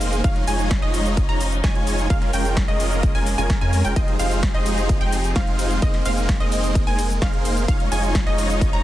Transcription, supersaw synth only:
0.00 0.22 A#3 loud
0.00 0.22 D#4 medium
0.00 0.22 G#4 medium
0.00 0.22 C5 medium
0.00 0.22 F5 loud
0.24 0.45 G#3 medium
0.24 0.45 D#4 medium
0.24 0.45 F4 medium
0.24 0.45 C#5 medium
0.24 0.45 F5 medium
0.48 0.80 G#3 loud
0.48 0.80 D#4 medium
0.48 0.80 F4 medium
0.48 0.80 C#5 medium
0.48 0.80 G#5 loud
0.82 1.26 G#3 medium
0.82 1.26 D#4 medium
0.82 1.26 F4 medium
0.82 1.26 C#5 medium
0.82 1.26 D#5 loud
1.29 1.42 G#3 medium
1.29 1.42 D#4 medium
1.29 1.42 F4 medium
1.29 1.42 C#5 medium
1.29 1.42 A#5 loud
1.64 2.08 G#3 medium
1.64 2.08 D#4 medium
1.64 2.08 F4 medium
1.64 2.08 C#5 medium
1.64 2.08 G#5 loud
2.10 2.31 G#3 medium
2.10 2.31 C#4 medium
2.10 2.31 F4 medium
2.10 2.31 A#4 medium
2.10 2.31 F5 medium
2.34 2.66 G#3 medium
2.34 2.66 C#4 medium
2.34 2.66 F4 medium
2.34 2.66 A#4 medium
2.34 2.66 G5 loud
2.68 3.12 G#3 medium
2.68 3.12 C#4 medium
2.68 3.12 F4 medium
2.68 3.12 A#4 medium
2.68 3.12 D#5 loud
3.15 3.28 G#3 medium
3.15 3.28 C#4 medium
3.15 3.28 F4 medium
3.15 3.28 A#4 medium
3.15 3.28 G#5 loud
3.38 3.59 G#3 medium
3.38 3.59 C#4 medium
3.38 3.59 F4 medium
3.38 3.59 A#4 medium
3.38 3.59 G#5 loud
3.61 3.82 G#3 loud
3.61 3.82 C#4 medium
3.61 3.82 F4 medium
3.61 3.82 A#4 medium
3.61 3.82 G#5 loud
3.85 3.94 G#3 medium
3.85 3.94 C#4 medium
3.85 3.94 F4 medium
3.85 3.94 A#4 medium
3.85 3.94 G5 medium
3.96 4.17 G#3 medium
3.96 4.17 D#4 medium
3.96 4.17 F4 medium
3.96 4.17 C5 medium
3.96 4.17 D#5 medium
4.19 4.52 G#3 medium
4.19 4.52 D#4 medium
4.19 4.52 F4 medium
4.19 4.52 C5 medium
4.19 4.52 F5 loud
4.54 4.98 G#3 medium
4.54 4.98 D#4 medium
4.54 4.98 F4 medium
4.54 4.98 C5 medium
4.54 4.98 D#5 loud
5.01 5.14 G#3 medium
5.01 5.14 D#4 medium
5.01 5.14 F4 medium
5.01 5.15 C5 medium
5.01 5.14 G5 loud
5.36 5.80 G#3 medium
5.36 5.80 D#4 medium
5.36 5.80 F4 medium
5.36 5.80 C5 medium
5.36 5.80 F5 loud
5.82 6.03 A#3 medium
5.82 6.03 D#4 medium
5.82 6.03 G#4 medium
5.82 6.03 C5 medium
5.82 6.03 D#5 medium
6.05 6.38 A#3 medium
6.05 6.38 D#4 medium
6.05 6.38 G#4 medium
6.05 6.38 C5 medium
6.05 6.38 F5 loud
6.41 6.84 A#3 medium
6.41 6.84 D#4 medium
6.41 6.84 G#4 medium
6.41 6.84 C5 medium
6.41 6.84 D#5 loud
6.87 7.01 A#3 loud
6.87 7.01 D#4 medium
6.87 7.01 G#4 medium
6.87 7.01 C5 medium
6.87 7.01 G#5 loud
7.22 7.66 A#3 loud
7.22 7.66 D#4 medium
7.22 7.66 G#4 medium
7.22 7.66 C5 medium
7.22 7.66 F5 loud
7.68 7.89 G#3 medium
7.68 7.89 D#4 medium
7.68 7.89 F4 medium
7.68 7.89 C#5 medium
7.68 7.89 F5 medium
7.92 8.24 G#3 medium
7.92 8.24 D#4 medium
7.92 8.24 F4 medium
7.92 8.24 C#5 medium
7.92 8.24 G#5 loud
8.27 8.70 G#3 medium
8.27 8.70 D#4 medium
8.27 8.70 F4 medium
8.27 8.70 C#5 medium
8.27 8.70 D#5 loud
8.73 8.83 G#3 medium
8.73 8.83 D#4 medium
8.73 8.83 F4 medium
8.73 8.83 C#5 medium
8.73 8.83 A#5 loud

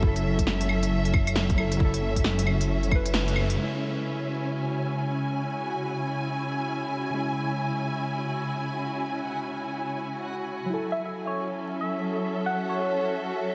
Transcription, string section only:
0.00 3.58 F#3 medium
0.00 10.69 C#4 medium
0.00 3.58 A4 medium
0.00 4.84 E5 medium
3.58 10.69 C#3 medium
3.94 12.39 E4 medium
3.94 12.05 G#5 medium
10.69 13.55 F#3 medium
11.24 13.55 C#4 medium
11.24 13.55 A4 medium
11.56 13.55 E5 medium

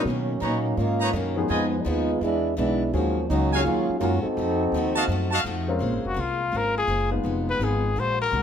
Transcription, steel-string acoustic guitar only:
0.07 0.31 B2 soft
0.07 0.31 D#3 soft
0.07 0.31 A#3 soft
0.07 0.32 C#4 medium
0.40 0.65 B2 medium
0.40 0.66 D#3 medium
0.40 0.67 A#3 medium
0.40 0.67 C#4 medium
0.77 1.02 B2 soft
0.77 1.03 D#3 soft
0.77 1.03 A#3 medium
0.77 1.03 C#4 medium
1.13 1.38 B2 medium
1.13 1.38 D#3 medium
1.13 1.39 A#3 medium
1.13 1.39 C#4 medium
1.49 1.74 F3 soft
1.49 1.74 B3 soft
1.49 1.75 D#4 soft
1.49 1.75 G#4 medium
1.85 2.09 F3 medium
1.85 2.10 B3 medium
1.85 2.10 D#4 medium
1.85 2.11 G#4 medium
2.21 2.46 E3 soft
2.21 2.46 G#3 medium
2.21 2.47 D4 soft
2.21 2.47 F#4 soft
2.57 2.81 E3 medium
2.57 2.82 G#3 medium
2.57 2.82 D4 medium
2.57 2.82 F#4 medium
2.93 3.18 D#3 soft
2.93 3.18 G#3 medium
2.93 3.19 C#4 soft
2.93 3.19 F#4 medium
3.31 3.54 D#3 medium
3.31 3.54 G#3 medium
3.31 3.55 C#4 medium
3.31 3.55 F#4 medium
3.64 3.89 D#3 soft
3.64 3.90 G#3 soft
3.64 3.90 C#4 medium
3.64 3.90 F#4 soft
4.01 4.25 D#3 medium
4.01 4.26 G#3 medium
4.01 4.26 C#4 medium
4.01 4.26 F#4 medium
4.38 4.62 F3 soft
4.38 4.62 A3 soft
4.38 4.63 D#4 soft
4.38 4.63 F#4 soft
4.74 4.98 F3 medium
4.74 4.98 A3 medium
4.74 4.99 D#4 medium
4.74 4.99 F#4 medium
5.09 5.33 F3 medium
5.09 5.34 A3 medium
5.09 5.34 D#4 medium
5.09 5.35 F#4 medium
5.44 5.69 F3 medium
5.44 5.70 A3 medium
5.44 5.70 D#4 medium
5.44 5.70 F#4 medium
5.79 6.04 A#3 soft
5.79 6.05 C#4 medium
5.79 6.05 G#4 medium
5.79 6.06 C5 medium
6.14 6.40 A#3 medium
6.14 6.41 C#4 medium
6.14 6.41 G#4 medium
6.14 6.41 C5 medium
6.52 6.76 A#3 soft
6.52 6.77 C#4 soft
6.52 6.78 G#4 soft
6.52 6.78 C5 soft
6.87 7.12 A#3 soft
6.87 7.13 C#4 medium
6.87 7.13 G#4 medium
6.87 7.13 C5 medium
7.24 7.48 F3 soft
7.24 7.49 B3 soft
7.24 7.49 D#4 soft
7.24 7.49 G#4 soft
7.61 7.85 F3 medium
7.61 7.85 B3 medium
7.61 7.85 D#4 medium
7.61 7.86 G#4 medium
7.96 8.20 A#2 soft
7.96 8.21 G#3 soft
7.96 8.21 D4 medium
7.96 8.22 F#4 soft
8.31 8.43 A#2 medium
8.31 8.43 G#3 medium
8.31 8.43 D4 medium
8.31 8.43 F#4 medium

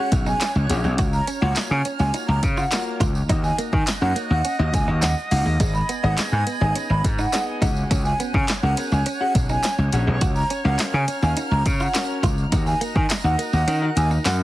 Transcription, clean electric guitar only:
0.27 0.38 D#4 medium
0.41 0.53 C#4 medium
0.55 muted clean electric guitar stroke soft
0.84 0.96 G#3 medium
0.99 1.10 F#4 loud
1.13 muted clean electric guitar stroke soft
1.28 1.39 C#4 medium
1.85 1.97 C#4 medium
2.14 2.26 D#4 loud
2.29 muted clean electric guitar stroke soft
2.58 2.69 F4 medium
3.01 3.12 F4 medium
3.29 3.41 D#4 medium
3.44 muted clean electric guitar stroke soft
3.58 3.70 A#3 medium
4.16 4.27 A#3 medium
4.45 4.56 C#4 medium
4.59 muted clean electric guitar stroke medium
4.88 4.99 D#4 medium
5.03 5.14 C#4 medium
5.17 muted clean electric guitar stroke soft
5.46 5.57 G#3 medium
5.60 5.72 G#3 loud
5.75 muted clean electric guitar stroke soft
5.89 6.01 B3 medium
6.47 6.58 B3 medium
6.76 6.87 C#4 loud
6.90 muted clean electric guitar stroke soft
7.19 7.30 D#4 medium
7.62 7.74 D#4 medium
7.91 8.02 C#4 medium
8.05 muted clean electric guitar stroke soft
8.20 8.31 B3 medium
8.78 8.89 B3 medium
9.06 9.18 C#4 medium
9.21 muted clean electric guitar stroke soft
9.50 9.61 D#4 medium
9.64 9.76 C#4 medium
9.79 muted clean electric guitar stroke soft
10.07 10.19 G#3 medium
10.22 10.33 F#4 loud
10.36 muted clean electric guitar stroke soft
10.51 10.62 C#4 medium
11.08 11.20 C#4 medium
11.37 11.49 D#4 loud
11.52 muted clean electric guitar stroke soft
11.81 11.92 F4 medium
12.24 12.35 F4 medium
12.52 12.64 D#4 medium
12.67 muted clean electric guitar stroke soft
12.81 12.93 A#3 medium
13.39 13.50 A#3 medium
13.68 13.79 C#4 medium
13.82 muted clean electric guitar stroke soft
14.11 14.23 D#4 medium
14.25 14.37 C#4 medium

